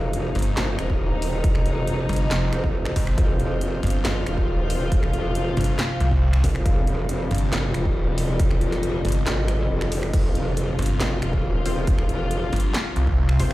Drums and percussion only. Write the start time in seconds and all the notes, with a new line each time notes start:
0.13 closed hi-hat
0.35 closed hi-hat
0.39 closed hi-hat
0.42 closed hi-hat
0.57 finger snap, snare, clap, closed hi-hat
0.79 finger snap, closed hi-hat
0.90 kick
1.22 open hi-hat
1.44 kick, closed hi-hat
1.55 finger snap
1.66 closed hi-hat
1.87 closed hi-hat
2.09 closed hi-hat
2.13 closed hi-hat
2.16 closed hi-hat
2.31 snare, clap, closed hi-hat
2.53 finger snap, closed hi-hat
2.64 kick
2.85 finger snap
2.96 kick, open hi-hat
3.07 finger snap
3.18 kick, closed hi-hat
3.40 closed hi-hat
3.61 closed hi-hat
3.83 closed hi-hat
3.87 closed hi-hat
3.90 closed hi-hat
4.05 finger snap, snare, clap, closed hi-hat
4.27 finger snap, closed hi-hat
4.38 kick
4.70 open hi-hat
4.92 kick, closed hi-hat
5.03 finger snap
5.13 closed hi-hat
5.35 closed hi-hat
5.57 closed hi-hat
5.61 closed hi-hat
5.64 closed hi-hat
5.79 snare, clap, closed hi-hat
6.00 closed hi-hat
6.12 kick
6.33 finger snap
6.44 kick, open hi-hat
6.55 finger snap
6.66 kick, closed hi-hat
6.87 closed hi-hat
7.09 closed hi-hat
7.31 closed hi-hat
7.35 closed hi-hat
7.38 closed hi-hat
7.53 finger snap, snare, clap, closed hi-hat
7.74 finger snap, closed hi-hat
7.85 kick
8.18 open hi-hat
8.40 kick, closed hi-hat
8.51 finger snap
8.61 closed hi-hat
8.72 snare, closed hi-hat
8.83 closed hi-hat
9.05 closed hi-hat
9.09 closed hi-hat
9.12 closed hi-hat
9.27 snare, clap, closed hi-hat
9.48 finger snap, closed hi-hat
9.81 finger snap
9.92 open hi-hat
10.03 finger snap
10.13 kick, closed hi-hat, crash
10.35 closed hi-hat
10.57 closed hi-hat
10.79 closed hi-hat
10.82 closed hi-hat
10.86 closed hi-hat
11.00 finger snap, snare, clap, closed hi-hat
11.22 finger snap, closed hi-hat
11.33 kick
11.66 open hi-hat
11.87 kick, closed hi-hat
11.98 finger snap
12.09 closed hi-hat
12.31 closed hi-hat
12.53 closed hi-hat
12.56 closed hi-hat
12.60 closed hi-hat
12.74 snare, clap, closed hi-hat
12.96 closed hi-hat
13.07 kick
13.29 finger snap
13.40 kick, open hi-hat